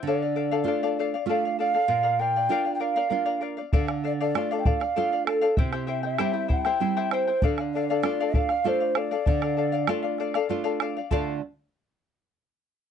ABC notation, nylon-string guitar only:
X:1
M:3/4
L:1/8
Q:1/4=97
K:Dm
V:1 name="Nylon-string guitar"
D,2 [A,DF]2 [A,DF]2 | B,,2 [B,DF]2 [B,DF]2 | D,2 [A,DF]2 [A,DF]2 | C,2 [G,CE]2 [G,CE]2 |
D,2 [A,DF]2 [A,DF]2 | D,2 [A,DF]2 [A,DF]2 | [D,A,Fda] z4 z |]